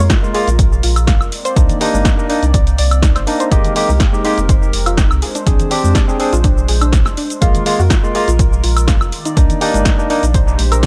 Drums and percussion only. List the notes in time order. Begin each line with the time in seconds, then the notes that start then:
0.10 kick, snare, closed hi-hat, shaker
0.24 shaker
0.34 open hi-hat
0.48 closed hi-hat, shaker
0.59 kick, closed hi-hat, shaker
0.73 shaker
0.83 open hi-hat
0.96 closed hi-hat, high woodblock, shaker
1.07 kick, snare, closed hi-hat, shaker
1.21 high woodblock, shaker
1.32 open hi-hat
1.45 closed hi-hat, shaker
1.56 kick, closed hi-hat, shaker
1.69 closed hi-hat, low conga, shaker
1.81 open hi-hat
1.94 high conga, shaker
2.05 kick, snare, closed hi-hat, shaker
2.19 shaker
2.30 open hi-hat
2.43 closed hi-hat, shaker
2.54 kick, closed hi-hat, shaker
2.67 closed hi-hat, shaker
2.78 open hi-hat
2.91 closed hi-hat, high woodblock, shaker
3.02 kick, snare, closed hi-hat, shaker
3.15 snare, closed hi-hat, high woodblock, shaker
3.27 open hi-hat
3.40 closed hi-hat, shaker
3.52 kick, closed hi-hat, shaker
3.64 closed hi-hat, low conga, shaker
3.76 open hi-hat
3.89 high conga, shaker
4.00 kick, snare, closed hi-hat, shaker
4.14 shaker
4.25 open hi-hat
4.38 closed hi-hat, shaker
4.49 kick, closed hi-hat, shaker
4.63 shaker
4.73 open hi-hat
4.86 closed hi-hat, high woodblock, shaker
4.97 kick, snare, closed hi-hat, shaker
5.11 high woodblock, shaker
5.22 open hi-hat
5.35 closed hi-hat, shaker
5.47 kick, closed hi-hat, shaker
5.60 closed hi-hat, low conga, shaker
5.71 open hi-hat
5.84 high conga, shaker
5.95 kick, snare, closed hi-hat, shaker
6.09 shaker
6.20 open hi-hat
6.33 closed hi-hat, shaker
6.44 kick, closed hi-hat, shaker
6.58 shaker
6.68 open hi-hat
6.81 closed hi-hat, high woodblock, shaker
6.92 kick, snare, closed hi-hat, shaker
7.05 snare, high woodblock, shaker
7.17 open hi-hat
7.30 closed hi-hat, shaker
7.42 kick, closed hi-hat, shaker
7.55 closed hi-hat, low conga, shaker
7.66 open hi-hat
7.79 high conga, shaker
7.90 kick, snare, closed hi-hat, shaker
8.04 shaker
8.15 open hi-hat
8.28 closed hi-hat, shaker
8.39 kick, closed hi-hat, shaker
8.53 shaker
8.64 open hi-hat
8.77 closed hi-hat, high woodblock, shaker
8.88 kick, snare, closed hi-hat, shaker
9.01 high woodblock, shaker
9.12 open hi-hat
9.25 closed hi-hat, shaker
9.37 kick, closed hi-hat, shaker
9.50 closed hi-hat, low conga, shaker
9.61 open hi-hat
9.74 closed hi-hat, high conga, shaker
9.85 kick, snare, closed hi-hat, shaker
9.99 shaker
10.10 open hi-hat
10.23 closed hi-hat, shaker
10.34 kick, closed hi-hat, shaker
10.48 shaker
10.58 open hi-hat, high conga
10.72 closed hi-hat, high woodblock, shaker
10.83 kick, snare, closed hi-hat